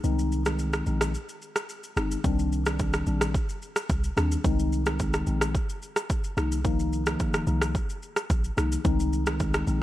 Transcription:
0.04 808-style bass C2, tine electric piano D#3 G#3 C4 D#4, shaker
0.19 shaker
0.32 shaker
0.45 tine electric piano D#3 G#3 C4 D#4, cross-stick, shaker
0.59 shaker
0.73 cross-stick, shaker
0.86 808-style bass A#1, tine electric piano D#3 G#3 C4 D#4, shaker
1.01 cross-stick, shaker
1.14 shaker
1.29 shaker
1.42 shaker
1.56 cross-stick, shaker
1.69 shaker
1.83 shaker
1.96 808-style bass G1, tine electric piano D#3 G#3 C4 D#4, cross-stick, shaker
2.11 shaker
2.24 808-style bass C2, tine electric piano D#3 G3 C4 D4, kick, shaker
2.39 shaker
2.52 shaker
2.66 tine electric piano D#3 G3 C4 D4, cross-stick, shaker
2.79 kick, shaker
2.93 cross-stick, shaker
3.06 808-style bass A#1, tine electric piano D#3 G3 C4 D4, shaker
3.21 cross-stick, shaker
3.34 kick, shaker
3.49 shaker
3.62 shaker
3.76 cross-stick, shaker
3.89 808-style bass C2, kick, shaker
4.04 shaker
4.16 808-style bass D#2, tine electric piano D#3 G3 C4 D4, cross-stick, shaker
4.32 shaker
4.44 808-style bass C2, tine electric piano D#3 G#3 C4 D#4, kick, shaker
4.59 shaker
4.73 shaker
4.86 tine electric piano D#3 G#3 C4 D#4, cross-stick, shaker
4.99 kick, shaker
5.13 cross-stick, shaker
5.27 808-style bass A#1, tine electric piano D#3 G#3 C4 D#4, shaker
5.41 cross-stick, shaker
5.55 kick, shaker
5.69 shaker
5.82 shaker
5.96 cross-stick, shaker
6.10 kick, shaker
6.24 shaker
6.37 808-style bass C2, tine electric piano D#3 F3 A#3 D#4, cross-stick, shaker
6.52 shaker
6.64 tine electric piano D#3 F3 A#3 D#4, kick, shaker
6.79 shaker
6.93 shaker
7.06 tine electric piano D#3 F3 A#3 D#4, cross-stick, shaker
7.20 kick, shaker
7.34 cross-stick, shaker
7.47 808-style bass C2, tine electric piano D#3 F3 A#3 D#4, shaker
7.62 cross-stick, shaker
7.75 kick, shaker
7.89 shaker
8.03 shaker
8.16 cross-stick, shaker
8.30 808-style bass A#1, kick, shaker
8.44 shaker
8.57 808-style bass C2, tine electric piano D#3 F3 A#3 D#4, cross-stick, shaker
8.72 shaker
8.84 808-style bass C2, tine electric piano D#3 G#3 C4 D#4, kick, shaker
9.00 shaker
9.13 shaker
9.26 tine electric piano D#3 G#3 C4 D#4, cross-stick, shaker
9.40 kick, shaker
9.54 cross-stick, shaker
9.67 808-style bass A#1, tine electric piano D#3 G#3 C4 D#4, shaker

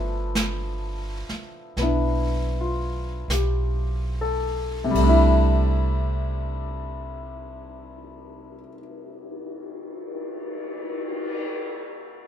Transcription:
Already playing: upright bass G1, grand piano F3 A3 B3 D4 E4 A4
0.35 brush sweep, snare, hi-hat pedal
1.29 muted upright bass stroke, snare
1.77 upright bass B1, grand piano B3, brush sweep, snare
1.81 grand piano D4 E4
2.61 grand piano F4
3.28 upright bass B1, grand piano G4, brush sweep, snare, hi-hat pedal
4.21 grand piano A4
4.84 grand piano C3
4.91 upright bass C2, grand piano G3
4.95 grand piano A3, kick, ride
5.04 grand piano D4
5.09 grand piano E4
6.09 cymbal swell

